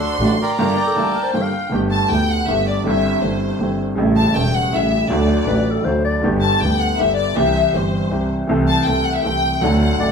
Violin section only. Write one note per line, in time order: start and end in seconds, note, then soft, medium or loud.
0.00 0.53 C6 medium
0.56 0.95 A#5 medium
0.95 1.33 A5 medium
1.32 1.71 G5 medium
1.90 2.08 A5 medium
2.09 2.28 G5 medium
2.30 2.48 F#5 medium
2.48 2.66 E5 medium
2.67 2.85 D5 medium
2.86 3.20 E5 medium
3.23 3.78 C5 medium
4.16 4.33 A5 medium
4.35 4.53 G5 medium
4.55 4.73 F#5 medium
4.74 5.11 E5 medium
5.11 5.86 D5 medium
6.41 6.59 A5 medium
6.60 6.80 G5 medium
6.80 6.99 F#5 medium
6.99 7.18 E5 medium
7.16 7.34 D5 medium
7.35 7.73 E5 medium
7.75 8.31 C5 medium
8.68 8.85 A5 loud
8.85 9.05 G5 loud
9.04 9.14 F#5 medium
9.14 9.24 E5 medium
9.22 9.61 G5 loud
9.61 10.12 F#5 medium